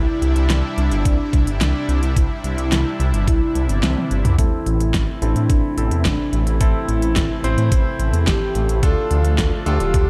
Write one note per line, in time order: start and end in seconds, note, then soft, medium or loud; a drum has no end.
0.00 4.35 C3 medium
0.00 4.35 G3 medium
0.00 4.35 D4 medium
0.00 0.66 E4 loud
0.00 4.35 E4 medium
0.22 0.34 C2 medium
0.22 closed hi-hat medium
0.36 0.48 C2 medium
0.36 closed hi-hat medium
0.50 0.62 C2 loud
0.50 snare loud
0.50 closed hi-hat medium
0.77 0.90 C2 loud
0.77 1.50 D4 loud
0.77 closed hi-hat medium
0.91 1.04 G1 medium
0.91 closed hi-hat medium
1.05 1.18 C2 loud
1.05 kick loud
1.05 closed hi-hat medium
1.33 1.46 C2 medium
1.33 kick loud
1.33 closed hi-hat medium
1.47 1.60 G1 medium
1.47 closed hi-hat medium
1.61 1.73 C2 loud
1.61 1.99 D4 medium
1.61 snare loud
1.61 closed hi-hat medium
1.89 2.01 C2 loud
1.89 closed hi-hat medium
2.02 2.15 C2 medium
2.02 closed hi-hat medium
2.16 2.29 C2 loud
2.16 3.16 E4 loud
2.16 kick loud
2.16 closed hi-hat medium
2.44 2.57 C2 medium
2.44 closed hi-hat medium
2.58 2.71 C2 medium
2.58 closed hi-hat medium
2.72 2.84 C2 loud
2.72 snare loud
2.72 closed hi-hat medium
3.00 3.12 C2 loud
3.00 closed hi-hat medium
3.13 3.26 G1 medium
3.13 closed hi-hat medium
3.27 3.40 C2 loud
3.27 3.66 E4 medium
3.27 kick loud
3.27 closed hi-hat medium
3.55 3.68 C2 loud
3.55 closed hi-hat medium
3.69 3.82 G1 medium
3.69 closed hi-hat medium
3.83 3.96 C2 loud
3.83 4.21 C4 medium
3.83 snare loud
3.83 closed hi-hat medium
3.83 high tom medium
3.97 high tom medium
4.11 4.23 G1 loud
4.11 closed hi-hat medium
4.25 4.37 C2 medium
4.25 closed hi-hat medium
4.25 mid tom medium
4.38 4.51 A1 loud
4.38 8.79 C3 medium
4.38 8.79 E3 medium
4.38 10.10 A3 medium
4.38 5.19 C4 medium
4.38 8.79 E4 medium
4.38 5.19 E4 medium
4.38 5.11 E4 loud
4.38 5.19 A4 medium
4.38 kick loud
4.38 closed hi-hat medium
4.66 4.79 A1 medium
4.66 closed hi-hat medium
4.80 4.93 A1 medium
4.80 closed hi-hat medium
4.94 5.07 A1 loud
4.94 kick loud
4.94 snare loud
4.94 closed hi-hat medium
5.22 5.34 A1 loud
5.22 5.74 C4 medium
5.22 5.94 D4 medium
5.22 5.74 E4 medium
5.22 5.74 A4 medium
5.22 closed hi-hat medium
5.36 5.48 A2 medium
5.36 closed hi-hat medium
5.50 5.62 A1 loud
5.50 kick loud
5.50 closed hi-hat medium
5.77 5.90 A1 loud
5.77 6.58 C4 medium
5.77 6.58 E4 medium
5.77 6.58 A4 medium
5.77 closed hi-hat medium
5.91 6.04 E2 medium
5.91 closed hi-hat medium
6.05 6.18 A1 loud
6.05 6.43 D4 loud
6.05 kick loud
6.05 snare loud
6.05 closed hi-hat medium
6.33 6.45 A1 loud
6.33 closed hi-hat medium
6.47 6.59 A1 medium
6.47 closed hi-hat medium
6.61 6.73 A1 loud
6.61 7.41 C4 medium
6.61 7.61 E4 loud
6.61 7.41 E4 medium
6.61 7.41 A4 loud
6.61 kick loud
6.61 closed hi-hat medium
6.88 7.01 A1 medium
6.88 closed hi-hat medium
7.02 7.15 A1 medium
7.02 closed hi-hat medium
7.16 7.29 A1 loud
7.16 kick loud
7.16 snare loud
7.16 closed hi-hat medium
7.44 7.57 A1 loud
7.44 8.80 C4 medium
7.44 8.80 E4 medium
7.44 8.80 C5 loud
7.44 closed hi-hat medium
7.58 7.70 A2 medium
7.58 closed hi-hat medium
7.72 7.84 A1 loud
7.72 8.10 E4 medium
7.72 kick loud
7.72 closed hi-hat loud
7.99 8.12 A1 loud
7.99 closed hi-hat medium
8.13 8.26 E2 medium
8.13 closed hi-hat medium
8.27 8.40 A1 loud
8.27 8.85 G4 medium
8.27 kick loud
8.27 snare loud
8.27 closed hi-hat medium
8.55 8.68 A1 medium
8.55 closed hi-hat medium
8.69 8.82 A1 medium
8.69 closed hi-hat medium
8.83 8.96 D2 loud
8.83 10.10 D3 medium
8.83 10.10 F3 medium
8.83 9.63 D4 medium
8.83 10.10 F4 medium
8.83 9.63 F4 medium
8.83 9.63 A4 medium
8.83 9.55 A4 loud
8.83 kick loud
8.83 closed hi-hat medium
9.11 9.23 D2 medium
9.11 closed hi-hat medium
9.24 9.37 D2 medium
9.24 closed hi-hat medium
9.38 9.51 D2 loud
9.38 kick loud
9.38 snare loud
9.38 closed hi-hat medium
9.66 9.79 D2 loud
9.66 10.10 D4 medium
9.66 10.10 F4 medium
9.66 10.10 G4 loud
9.66 10.10 A4 medium
9.66 closed hi-hat medium
9.80 9.93 D1 medium
9.80 closed hi-hat medium
9.94 10.07 D2 loud
9.94 kick loud
9.94 closed hi-hat medium